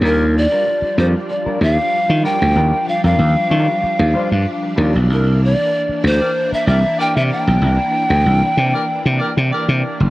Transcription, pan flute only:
0.06 A#4
0.37 D5
0.99 C5
1.30 D5
1.63 E5
1.75 F5
2.25 G5
2.89 F5
3.05 F5
5.13 A#4
5.44 D5
6.07 C5
6.54 E5
6.68 E5
7.00 G5
7.17 E5
7.32 G5

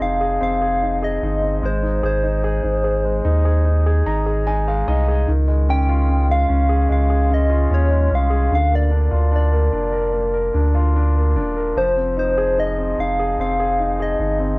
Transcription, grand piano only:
Already playing: F3 C4 D#4 G#4
0.02 D#4
0.21 G#4
0.41 C4
0.61 G#4
0.82 D#4
1.02 G#4
1.23 D#4
1.42 C4
1.63 G#3
1.83 D#4
2.03 G#4
2.23 D#4
2.44 G#4
2.63 D#4
2.84 G#4
3.05 G#3
3.25 D#4
3.45 G#4
3.65 D#4
3.86 G#4
4.06 D#4 A#5
4.26 G#4
4.47 D#4 G#5
4.68 G#3 F5
4.88 D#4 D#5
5.08 G#4
5.28 D#3
5.48 G#3
5.69 C#4
5.89 F4
6.09 C#4
6.29 G#3
6.49 C#4
6.69 G#4
6.89 G#3
7.10 G#4
7.30 C#4
7.50 F4
7.71 C#4
7.90 G#3
8.10 C#4
8.30 G#4
8.50 D3
8.71 A#3
8.91 D4
9.11 F4
9.32 D4
9.52 A#3
9.73 D4
9.92 A#4
10.13 A#3
10.34 A#4
10.54 D4
10.75 F4
10.96 D4
11.16 A#3
11.36 D4
11.57 A#4
11.77 F3
11.97 C4
12.17 D#4
12.38 G#4
12.58 D#4
12.78 C4
12.99 D#4
13.19 G#4
13.40 C4
13.59 G#4
13.79 D#4
14.00 G#4
14.20 D#4
14.40 C4

